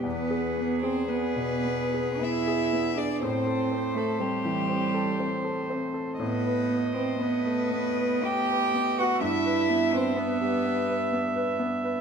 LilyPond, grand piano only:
\new Staff \with { instrumentName = "Grand piano" } { \time 3/4 \key e \minor \tempo 4 = 61 e,16 gis'16 b16 gis'16 b16 b,16 b16 gis'16 b16 gis'16 b16 gis'16 | a,16 a'16 c'16 a'16 c'16 e16 c'16 a'16 c'16 a'16 c'16 a'16 | a,16 b'16 b16 b'16 b16 a16 b16 b'16 b16 b'16 b16 b'16 | g,16 b'16 b16 b'16 b16 g16 b16 b'16 b16 b'16 b16 b'16 | }